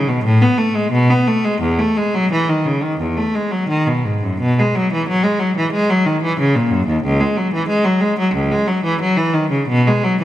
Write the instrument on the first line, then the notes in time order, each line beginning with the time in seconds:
cello
0.08 B2
0.24 A2
0.42 B3
0.58 A3
0.76 G#3
0.92 B2
1.10 B3
1.28 A3
1.45 G#3
1.61 E2
1.79 A3
1.97 G#3
2.14 F#3
2.31 E3
2.49 D#3
2.66 C#3
2.83 D#3
3.00 E2
3.17 A3
3.35 G#3
3.51 F#3
3.69 D#3
3.87 B2
4.05 G#2
4.23 F#2
4.40 B2
4.59 G#3
4.75 F#3
4.93 E3
5.08 F#3
5.24 G#3
5.39 F#3
5.56 E3
5.72 G#3
5.90 F#3
6.06 D#3
6.23 E3
6.39 C#3
6.55 A#2
6.71 F#2
6.87 D#2
7.03 C#2
7.21 G#3
7.37 F#3
7.53 E3
7.68 G#3
7.85 F#3
8.01 G#3
8.19 F#3
8.34 C#2
8.51 G#3
8.67 F#3
8.84 E3
9.01 F#3
9.17 E3
9.34 D#3
9.50 C#3
9.68 B2
9.87 G#3
10.04 F#3
10.21 E3